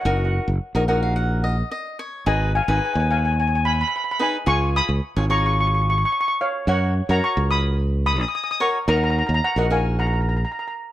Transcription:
0.01 fingered electric bass F#1, cavaquinho D#4, steel pan F#5
0.06 cavaquinho F#4 A#4, steel pan F#5
0.17 steel pan F#5
0.25 steel pan F#5
0.48 fingered electric bass F#1
0.75 fingered electric bass A#1, cavaquinho D#4 F#4 A#4
0.88 cavaquinho D#4 F#4 A#4 F#5
1.03 cavaquinho F5
1.16 cavaquinho F#5
1.44 cavaquinho D#5
1.71 cavaquinho D#5
1.99 cavaquinho C#5
2.26 fingered electric bass G#1, cavaquinho D#4 G#4 B4, steel pan D#5 G#5
2.55 steel pan F5 G#5
2.63 steel pan G#5
2.68 fingered electric bass G#1, cavaquinho D#4 G#4 B4, steel pan G#5
2.77 steel pan G#5
2.85 steel pan G#5
2.93 fingered electric bass D#2, steel pan G#5
3.00 steel pan G#5
3.11 steel pan F5 G#5
3.18 steel pan G#5
3.25 steel pan G#5
3.32 steel pan G#5
3.40 steel pan G#5
3.48 steel pan G#5
3.55 steel pan G#5
3.65 steel pan G#5 B5
3.73 steel pan B5
3.81 steel pan B5
3.88 steel pan B5
3.96 steel pan B5
4.04 steel pan B5
4.11 steel pan B5
4.19 cavaquinho D#4 G#4 B4, steel pan G#5 B5
4.46 fingered electric bass C#2, cavaquinho F4 G#4 C#5, steel pan G#5 C#6
4.76 steel pan B5 D#6
4.89 fingered electric bass C#2
5.16 fingered electric bass G#1, cavaquinho F4 G#4 C#5
5.30 cavaquinho F4 G#4 C#5, steel pan A#5 C#6
5.38 steel pan C#6
5.46 steel pan C#6
5.54 steel pan C#6
5.61 steel pan C#6
5.67 steel pan C#6
5.75 steel pan C#6
5.82 steel pan C#6
5.90 steel pan C#6
5.98 steel pan C#6
6.05 steel pan C#6
6.12 steel pan C#6
6.21 steel pan C#6
6.28 steel pan C#6
6.41 steel pan C#5 F5
6.67 fingered electric bass F#2, cavaquinho F#4 A#4 C#5, steel pan C#5 F#5
7.09 fingered electric bass F#2, cavaquinho F#4 A#4 C#5, steel pan F#5 A#5
7.24 steel pan A#5 C#6
7.37 fingered electric bass C#2
7.51 steel pan B5 D#6
8.06 steel pan B5 D#6
8.13 steel pan D#6
8.21 steel pan D#6
8.29 steel pan D#6
8.35 steel pan D#6
8.44 steel pan D#6
8.51 steel pan D#6
8.60 cavaquinho F#4 A#4 C#5, steel pan A#5 C#6
8.88 fingered electric bass D#2, cavaquinho D#4 F#4 A#4, steel pan F#5 A#5
8.97 steel pan A#5
9.04 steel pan A#5
9.10 steel pan A#5
9.19 steel pan A#5
9.26 fingered electric bass D#2, steel pan A#5
9.34 steel pan A#5
9.44 steel pan F#5 A#5
9.56 fingered electric bass A#1, cavaquinho D#4 F#4 A#4, steel pan D#5 F#5
9.70 cavaquinho D#4 F#4 A#4, steel pan F5 G#5
9.99 steel pan F#5 A#5
10.07 steel pan A#5
10.13 steel pan A#5
10.21 steel pan A#5
10.29 steel pan A#5
10.37 steel pan A#5
10.45 steel pan A#5
10.52 steel pan A#5
10.59 steel pan A#5
10.68 steel pan A#5

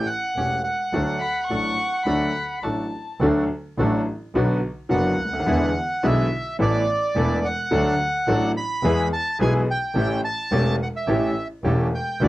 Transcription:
0.06 bandoneon F#5
0.36 double bass E1, grand piano E1 E2 E3 A3 C#4 G4, bandoneon A3 C#4 G4
0.64 bandoneon F#5
0.93 double bass D2, grand piano D2 D3 F#3 A3 D4 A4, bandoneon A3 D4 F#4
1.20 violin B5
1.46 double bass A1, bandoneon D4, violin C#6
1.50 grand piano A1 A2 F#3 A3 D4 A4, bandoneon A3 F#4
2.06 double bass D2, grand piano D2 D3 F#3 A3 D4 A4, bandoneon A3 D4 F#4, violin B5
2.63 double bass A1, grand piano A1 A2 F#3 A3 D4 A4, bandoneon A3 D4 F#4, violin A5
3.20 double bass D2, grand piano D2 D3 F#3 A3 D4 A4, bandoneon A3 D4 F#4
3.78 double bass A1, grand piano A1 A2 F#3 A3 D4 A4, bandoneon A3 D4 F#4
4.34 double bass B1, grand piano B1 B2 D3 F#3 B3 F#4, bandoneon B3 D4 F#4
4.89 grand piano F#1 F#2 D3 F#3 B3 F#4, double bass F#1, bandoneon B3 D4 F#4 F#5
5.20 double bass D2
5.25 grand piano C#2
5.33 grand piano D2
5.40 grand piano D#2
5.46 grand piano E2 D3 E3 G#3 B3 E4, double bass E2, bandoneon D4 E4 G#4
6.03 grand piano B1 B2 D3 G#3 B3 E4, double bass B1, bandoneon D4 E4 G#4 E5
6.59 grand piano A1 A2 E3 A3 B3 A4, double bass A1, bandoneon B3 E4 A4 D5
7.15 double bass E1, grand piano E1 E2 E3 A3 B3 A4, bandoneon B3 E4 A4
7.45 bandoneon F#5
7.71 double bass D2, grand piano D2 D3 F#3 A3 D4 A4, bandoneon D4 F#4 A4
8.28 double bass A1, grand piano A1 A2 F#3 A3 D4 A4, bandoneon D4 F#4 A4
8.57 bandoneon B5
8.82 double bass E2, grand piano E2 E3 G#3 B3 G#4, bandoneon B3 E4 G#4
9.13 bandoneon A5
9.39 double bass B1, grand piano B1 B2 E3 G#3 B3 G#4, bandoneon B3 E4 G#4 G#5
9.71 bandoneon G5
9.94 double bass A1, grand piano A1 A2 E3 A3 C#4 G4, bandoneon C#4 G4 A4
10.25 bandoneon A5
10.51 double bass E1, grand piano E1 E2 E3 A3 C#4 G4, bandoneon C#4 G4 A4
10.83 bandoneon F#5
10.96 bandoneon E5
11.07 double bass A1, grand piano A1 A2 E3 A3 C#4 G4, bandoneon C#4 G4 A4
11.64 double bass E1, grand piano E1 E2 E3 A3 C#4 G4, bandoneon C#4 G4 A4
11.95 bandoneon G5
12.20 double bass D2, grand piano D2 D3 E3 A3 D4 F#4, bandoneon D4 E4 F#4 D5

